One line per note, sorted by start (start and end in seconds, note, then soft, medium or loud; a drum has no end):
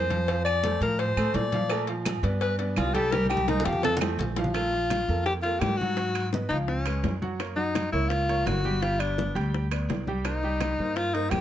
0.00 0.76 F2 loud
0.00 0.43 C5 medium
0.10 0.25 F3 loud
0.10 0.25 F4 medium
0.10 0.25 F5 medium
0.10 cowbell medium
0.10 high conga medium
0.28 0.57 F3 medium
0.28 0.57 F4 medium
0.28 0.58 F5 medium
0.28 cowbell loud
0.28 high conga soft
0.28 low agogo medium
0.45 0.78 D5 loud
0.45 high conga soft
0.45 low agogo loud
0.45 claves medium
0.63 0.79 A3 medium
0.63 0.79 A4 medium
0.63 0.79 C5 medium
0.63 cowbell medium
0.63 high conga loud
0.63 low timbale medium
0.63 low agogo medium
0.81 1.14 A2 medium
0.81 1.11 F3 medium
0.81 1.11 F4 medium
0.81 1.01 A#4 medium
0.81 1.12 F5 medium
0.81 cowbell medium
0.81 high conga soft
0.99 1.37 C5 medium
0.99 cowbell loud
0.99 high conga soft
0.99 low agogo medium
1.17 1.33 A2 medium
1.17 1.47 A3 medium
1.17 1.47 A4 medium
1.17 1.47 C5 medium
1.17 high conga soft
1.17 low agogo loud
1.17 claves medium
1.34 2.18 A#2 loud
1.34 1.88 D5 medium
1.34 cowbell medium
1.34 high conga medium
1.34 low timbale medium
1.52 1.68 F3 medium
1.52 1.68 F4 medium
1.52 1.68 F5 loud
1.52 cowbell medium
1.52 high conga medium
1.70 1.85 A3 medium
1.70 1.86 A4 medium
1.70 1.86 A#4 medium
1.70 cowbell loud
1.70 high conga soft
1.70 low agogo loud
1.70 claves medium
1.87 2.17 F3 medium
1.87 2.18 F4 medium
1.87 2.18 F5 medium
1.87 cowbell medium
1.87 high conga soft
2.05 cowbell medium
2.05 high conga loud
2.05 low timbale medium
2.05 low agogo loud
2.05 claves medium
2.23 2.73 G2 medium
2.23 2.53 B3 medium
2.23 2.53 B4 medium
2.23 2.53 D5 medium
2.23 cowbell medium
2.23 high conga soft
2.41 2.58 B4 medium
2.41 cowbell loud
2.41 high conga soft
2.41 low agogo medium
2.58 2.89 B3 medium
2.58 2.74 D4 medium
2.58 2.89 B4 medium
2.58 2.89 D5 medium
2.58 cowbell medium
2.58 high conga soft
2.76 3.60 C2 loud
2.76 2.95 F4 medium
2.76 cowbell medium
2.76 high conga medium
2.76 low timbale medium
2.76 low agogo loud
2.76 claves medium
2.94 3.09 G3 loud
2.94 3.10 G4 loud
2.94 3.13 A4 loud
2.94 3.10 G5 loud
2.94 cowbell medium
2.94 high conga medium
3.12 3.42 G3 medium
3.12 3.42 G4 medium
3.12 3.29 A#4 loud
3.12 3.42 G5 medium
3.12 cowbell loud
3.12 high bongo loud
3.12 high conga medium
3.12 low agogo medium
3.26 high conga medium
3.30 3.50 G4 medium
3.30 high bongo medium
3.30 low agogo loud
3.30 claves medium
3.37 high conga loud
3.48 3.63 A#3 medium
3.48 3.67 D#4 medium
3.48 3.63 A#4 medium
3.48 3.63 C5 medium
3.48 cowbell medium
3.48 high bongo loud
3.48 high conga loud
3.48 low timbale medium
3.48 low agogo medium
3.60 low conga loud
3.65 4.16 F2 loud
3.65 3.95 F3 loud
3.65 3.96 F4 medium
3.65 3.83 G4 loud
3.65 3.96 F5 loud
3.65 cowbell medium
3.65 low bongo loud
3.73 low conga medium
3.83 3.95 A4 loud
3.83 cowbell loud
3.83 low bongo medium
3.83 low conga medium
3.83 high timbale medium
3.83 low agogo medium
3.97 low conga loud
4.01 4.31 A3 medium
4.01 4.31 A4 medium
4.01 4.31 C5 medium
4.01 low bongo loud
4.01 low timbale loud
4.01 low agogo loud
4.01 claves medium
4.18 5.02 A#1 loud
4.18 cowbell medium
4.18 low conga medium
4.36 4.52 F3 medium
4.36 4.52 F4 loud
4.36 4.53 F5 loud
4.36 cowbell medium
4.36 low bongo medium
4.36 low timbale loud
4.44 low conga medium
4.54 4.70 A3 medium
4.54 5.22 F4 loud
4.54 4.70 A4 medium
4.54 4.70 A#4 medium
4.54 high bongo medium
4.54 high conga soft
4.54 high timbale medium
4.54 claves medium
4.73 5.02 F3 medium
4.73 5.03 F4 medium
4.73 5.03 F5 medium
4.73 high bongo soft
4.73 high conga soft
4.90 high bongo medium
4.90 high conga loud
4.90 high timbale medium
4.90 low timbale medium
4.90 claves medium
5.08 5.58 F2 medium
5.08 5.38 A#3 medium
5.08 5.39 A4 medium
5.08 5.39 A#4 medium
5.08 high conga soft
5.26 5.34 G4 loud
5.26 high bongo medium
5.26 high conga soft
5.26 high timbale medium
5.42 5.74 A#3 medium
5.42 5.61 F4 loud
5.42 5.74 A4 medium
5.42 5.74 A#4 medium
5.42 high bongo soft
5.42 high conga soft
5.42 high timbale medium
5.60 6.45 G#2 medium
5.60 5.78 G4 loud
5.60 high bongo soft
5.60 low bongo medium
5.60 high conga medium
5.60 high timbale medium
5.60 low timbale medium
5.60 claves medium
5.77 6.32 F#4 loud
5.77 high bongo soft
5.81 5.95 F#3 medium
5.81 5.96 F#4 medium
5.81 5.96 F#5 medium
5.81 high conga medium
5.97 6.28 F#3 medium
5.97 6.27 F#4 medium
5.97 6.28 F#5 medium
5.97 high bongo medium
5.97 high conga soft
5.97 high timbale medium
6.15 high bongo soft
6.15 high conga soft
6.15 high timbale medium
6.15 claves medium
6.33 6.48 B3 medium
6.33 6.48 B4 medium
6.33 6.48 D#5 medium
6.33 high bongo medium
6.33 high conga medium
6.33 low timbale medium
6.49 7.00 C#2 medium
6.49 6.81 F3 medium
6.49 6.57 D#4 medium
6.49 6.81 F4 medium
6.49 6.81 F5 medium
6.49 high conga soft
6.49 high timbale medium
6.68 7.18 C#4 medium
6.68 high bongo medium
6.68 high conga soft
6.86 7.16 G#3 medium
6.86 7.16 G#4 medium
6.86 7.16 B4 medium
6.86 high bongo soft
6.86 high conga soft
6.86 high timbale loud
6.86 claves medium
7.03 7.87 F#2 medium
7.03 high bongo soft
7.03 low bongo medium
7.03 high conga medium
7.03 high timbale medium
7.03 low timbale medium
7.22 7.37 F#3 medium
7.22 7.37 F#4 medium
7.22 7.37 F#5 medium
7.22 high bongo soft
7.22 high conga medium
7.40 7.55 A#3 medium
7.40 7.54 A#4 medium
7.40 7.55 C#5 medium
7.40 high bongo medium
7.40 high conga soft
7.40 high timbale medium
7.40 claves medium
7.56 7.87 F#3 medium
7.56 7.90 D#4 medium
7.56 7.87 F#4 medium
7.56 7.87 F#5 medium
7.56 high bongo soft
7.56 high conga soft
7.75 high bongo medium
7.75 high conga medium
7.75 high timbale medium
7.75 low timbale medium
7.75 claves medium
7.92 8.43 C#2 medium
7.92 8.23 A#3 medium
7.92 8.11 E4 medium
7.92 8.23 A#4 medium
7.92 8.23 C#5 medium
7.92 high conga soft
8.09 8.48 F4 loud
8.09 high bongo medium
8.09 high conga soft
8.09 high timbale medium
8.29 8.58 A#3 medium
8.29 8.58 A#4 medium
8.29 8.59 C#5 medium
8.29 high bongo soft
8.29 high conga soft
8.29 high timbale medium
8.46 9.30 G1 medium
8.46 8.84 F#4 loud
8.46 high bongo soft
8.46 low bongo medium
8.46 high conga medium
8.46 high timbale medium
8.46 low timbale medium
8.46 claves medium
8.64 8.79 G3 medium
8.64 8.80 G4 medium
8.64 8.80 G5 medium
8.64 high bongo soft
8.64 high conga medium
8.82 9.12 G3 medium
8.82 9.01 F4 medium
8.82 9.12 G4 medium
8.82 9.12 G5 medium
8.82 high bongo medium
8.82 high conga soft
8.82 high timbale medium
9.00 9.36 D4 medium
9.00 high bongo soft
9.00 high conga soft
9.00 high timbale medium
9.00 claves medium
9.18 9.33 B3 medium
9.18 9.33 B4 medium
9.18 9.33 D5 medium
9.18 high bongo medium
9.18 high conga loud
9.18 low timbale medium
9.35 9.85 D2 loud
9.35 9.65 G3 medium
9.35 9.65 G4 medium
9.35 9.65 G5 medium
9.35 high conga soft
9.35 high timbale medium
9.54 high bongo medium
9.54 high conga soft
9.71 10.01 B3 medium
9.71 10.01 B4 medium
9.71 10.01 D5 medium
9.71 high bongo soft
9.71 high conga soft
9.71 high timbale medium
9.71 claves medium
9.89 10.72 C2 medium
9.89 high bongo soft
9.89 low bongo medium
9.89 high conga medium
9.89 high timbale medium
9.89 low timbale medium
10.07 10.22 G3 medium
10.07 10.22 G4 medium
10.07 10.22 G5 medium
10.07 high bongo soft
10.07 high conga medium
10.25 10.40 A#3 medium
10.25 10.98 D#4 medium
10.25 10.40 A#4 medium
10.25 10.41 C5 medium
10.25 high bongo medium
10.25 high conga soft
10.25 high timbale medium
10.25 claves medium
10.43 10.72 G3 medium
10.43 10.73 G4 medium
10.43 10.73 G5 medium
10.43 high bongo soft
10.43 high conga soft
10.60 high bongo medium
10.60 high conga loud
10.60 high timbale medium
10.60 low timbale medium
10.60 claves medium
10.79 11.28 G2 medium
10.79 11.09 A#3 medium
10.79 11.09 A#4 medium
10.79 11.09 C5 medium
10.79 high conga soft
10.96 11.15 F4 medium
10.96 high bongo medium
10.96 high conga soft
10.96 high timbale medium
11.14 11.41 A#3 medium
11.14 11.32 D#4 medium
11.14 11.41 A#4 medium
11.14 11.41 C5 medium
11.14 high bongo soft
11.14 high conga soft
11.14 high timbale medium
11.30 11.41 F2 medium
11.30 11.41 G4 loud
11.30 high bongo soft
11.30 low bongo medium
11.30 high conga medium
11.30 high timbale medium
11.30 low timbale medium
11.30 claves medium